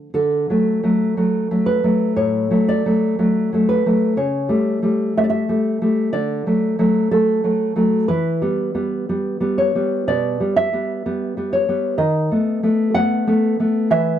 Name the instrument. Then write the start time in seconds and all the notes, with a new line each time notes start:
nylon-string guitar
0.14 D3 A4
0.50 F#3 A3
0.83 F#3 A3
1.17 F#3 A3
1.51 F#3 A3
1.66 B4
1.84 F#3 A3
2.16 A2 C#5
2.50 F#3 A3
2.68 D5
2.86 F#3 A3
3.19 F#3 A3
3.53 F#3 A3
3.69 B4
3.86 F#3 A3
4.17 C#3 C#5
4.49 G3 A3
4.82 G3 A3
5.17 G3 A3 E5
5.24 D5
5.30 E5
5.49 G3 A3
5.82 G3 A3
6.13 D3 D5
6.46 F#3 A3
6.79 F#3 A3
7.11 F#3 A3 A4
7.44 F#3 A3
7.76 F#3 A3
8.08 E3 B4
8.42 G3 B3
8.75 G3 B3
9.09 G3 B3
9.40 G3 B3
9.58 C#5
9.75 G3 B3
10.07 B2 D5
10.40 G3 B3
10.56 E5
10.73 G3 B3
11.06 G3 B3
11.37 G3 B3
11.53 C#5
11.69 G3 B3
11.98 D#3 D#5
12.31 A3 B3
12.63 A3 B3
12.94 A3 B3 F#5
13.27 A3 B3
13.60 A3 B3
13.91 E3 E5